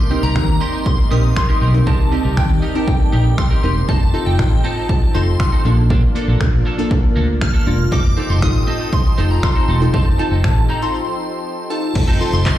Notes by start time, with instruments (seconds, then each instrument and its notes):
Already playing: analog synth pad C3 G3 A#3 D#4 D5, synth bell C6
0.10 synth pluck C4 D#4 A#4, clean electric guitar D#4 G4 A#4
0.23 fingered electric bass C2, clean electric guitar D#4 G4 A#4, synth bell A#5
0.36 fingered electric bass D#2, synth pluck C4 D#4 A#4, finger snap, muted clean electric guitar stroke, kick
0.48 muted clean electric guitar stroke
0.61 clean electric guitar D#4 G4 A#4, synth bell C6
0.73 clean electric guitar D#4 G4 A#4
0.86 synth bell C6, kick
0.98 muted clean electric guitar stroke
1.11 fingered electric bass A#1, synth pluck C4 D#4 A#4, clean electric guitar D#4 G4 A#4, synth bell D#6
1.24 muted clean electric guitar stroke
1.36 synth bell C6, finger snap, muted clean electric guitar stroke, kick
1.49 clean electric guitar D#4 G4 A#4
1.61 fingered electric bass B1, clean electric guitar D#4 G4 A#4
1.74 synth pluck C4 D#4 A#4, muted clean electric guitar stroke
1.86 fingered electric bass C2, clean electric guitar D#4 G4 A#4, synth bell A5, kick
1.99 muted clean electric guitar stroke
2.12 synth pluck C4 D#4 G4, clean electric guitar D#4 G4 A#4
2.24 fingered electric bass C2, clean electric guitar D#4 G4 A#4
2.37 fingered electric bass D#2, synth bell G5, finger snap, muted clean electric guitar stroke, kick
2.50 muted clean electric guitar stroke
2.62 clean electric guitar D#4 G4 A#4
2.75 synth pluck C4 D#4 A#4, clean electric guitar D#4 G4 A#4, synth bell A5
2.88 synth pluck C4 D#4 A4, synth bell G5, kick
3.00 muted clean electric guitar stroke
3.12 fingered electric bass A#1, clean electric guitar D#4 G4 A#4
3.25 muted clean electric guitar stroke
3.38 synth bell C6, finger snap, muted clean electric guitar stroke, kick
3.50 clean electric guitar D#4 G4 A#4
3.63 fingered electric bass E1, synth pluck C4 D#4 A#4, clean electric guitar D#4 G4 A#4
3.76 muted clean electric guitar stroke
3.88 fingered electric bass F1, analog synth pad F3 C4 D#4 G4 A4, clean electric guitar C4 D#4 A4, synth bell A5, kick
4.01 muted clean electric guitar stroke
4.14 clean electric guitar C4 D#4 A4, synth pluck D#4 F4 A4
4.26 fingered electric bass F1, clean electric guitar C4 D#4 A4, synth bell G5
4.39 fingered electric bass A1, synth pluck D#4 F4 A4, finger snap, kick
4.52 muted clean electric guitar stroke
4.64 clean electric guitar C4 D#4 A4, synth bell A5
4.77 clean electric guitar C4 D#4 A4
4.89 synth bell A5, kick
5.02 muted clean electric guitar stroke
5.14 fingered electric bass F1, clean electric guitar C4 D#4 A4, synth pluck D#4 F4 A4, synth bell C6
5.27 muted clean electric guitar stroke
5.40 finger snap, muted clean electric guitar stroke, kick
5.52 clean electric guitar C4 D#4 A4
5.65 fingered electric bass A#1, analog synth pad F3 A#3 D4, clean electric guitar A#3 D4 A4, synth pluck A#3 D4 A4
5.77 muted clean electric guitar stroke
5.90 clean electric guitar A#3 D4 A4, kick
6.03 muted clean electric guitar stroke
6.15 synth pluck A#3 D4 A4, clean electric guitar A#3 D4 A4
6.28 fingered electric bass A#1, clean electric guitar A#3 D4 A4
6.40 fingered electric bass A#1, finger snap, muted clean electric guitar stroke, kick
6.53 muted clean electric guitar stroke
6.65 clean electric guitar A#3 D4 A4
6.78 synth pluck A#3 D4 A4, clean electric guitar A#3 D4 A4
6.91 synth pluck A#3 D4 A#4, kick
7.03 muted clean electric guitar stroke
7.16 fingered electric bass D2, clean electric guitar A#3 D4 A4
7.29 muted clean electric guitar stroke
7.41 synth bell F6, finger snap, muted clean electric guitar stroke, kick
7.54 clean electric guitar A#3 D4 A4
7.66 fingered electric bass E1, clean electric guitar A#3 D4 A4, synth pluck A#3 D4 F4
7.79 muted clean electric guitar stroke
7.91 fingered electric bass F1, analog synth pad F3 C4 D#4 G4 A4, clean electric guitar C4 D#4 A4, synth bell D6, kick
8.04 muted clean electric guitar stroke
8.17 clean electric guitar C4 D#4 A4, synth pluck D#4 F4 A4
8.29 fingered electric bass F1, clean electric guitar C4 D#4 A4, synth bell C6
8.42 fingered electric bass A1, synth pluck D#4 F4 A4, synth bell D#6, finger snap, muted clean electric guitar stroke, kick
8.55 muted clean electric guitar stroke
8.67 clean electric guitar C4 D#4 A4
8.80 clean electric guitar C4 D#4 A4
8.93 synth bell C6, kick
9.05 muted clean electric guitar stroke
9.18 fingered electric bass F1, clean electric guitar C4 D#4 A4, synth pluck D#4 F4 A4
9.30 synth bell A#5, muted clean electric guitar stroke
9.43 synth bell C6, finger snap, muted clean electric guitar stroke, kick
9.55 clean electric guitar C4 D#4 A4
9.68 fingered electric bass E1, clean electric guitar C4 D#4 A4
9.81 synth pluck D#4 F4 A4, muted clean electric guitar stroke
9.93 fingered electric bass F1, clean electric guitar C4 D#4 A4, synth bell A5, kick
10.06 muted clean electric guitar stroke
10.18 clean electric guitar C4 D#4 A4, synth pluck D#4 F4 A4, synth bell A5
10.31 fingered electric bass F1, clean electric guitar C4 D#4 A4
10.44 fingered electric bass A1, finger snap, kick
10.56 muted clean electric guitar stroke
10.69 clean electric guitar C4 D#4 A4, synth bell A#5
10.82 clean electric guitar C4 D#4 A4, synth pluck D#4 F4 A4, synth bell C6
10.94 synth pluck D#4 F4 A4
11.70 synth pluck D#4 F4 A4, synth bell A5
11.95 fingered electric bass F1, synth pluck F3, analog synth pad F3 C4 D#4 G4 A4, muted clean electric guitar stroke, kick, crash
12.08 synth pluck F3, clean electric guitar C4 D#4 A4
12.20 clean electric guitar C4 D#4 A4, synth pluck D#4 F4 A4, synth bell C6
12.33 fingered electric bass F1, synth pluck D#5, synth bell C6, muted clean electric guitar stroke
12.46 synth pluck D#5, kick, clap